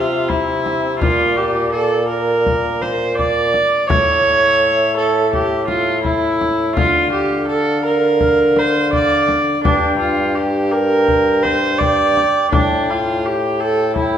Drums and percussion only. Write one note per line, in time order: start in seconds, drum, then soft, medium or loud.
0.30 frame drum soft
0.66 frame drum soft
1.02 frame drum medium
2.46 frame drum soft
2.83 frame drum soft
3.19 frame drum soft
3.54 frame drum medium
3.90 frame drum medium
5.33 frame drum soft
5.68 frame drum medium
6.05 frame drum soft
6.41 frame drum medium
6.77 frame drum medium
8.20 frame drum medium
8.56 frame drum soft
8.93 frame drum soft
9.28 frame drum soft
9.65 frame drum medium
11.08 frame drum soft
11.45 frame drum soft
11.81 frame drum medium
12.17 frame drum soft
12.53 frame drum medium
13.96 frame drum soft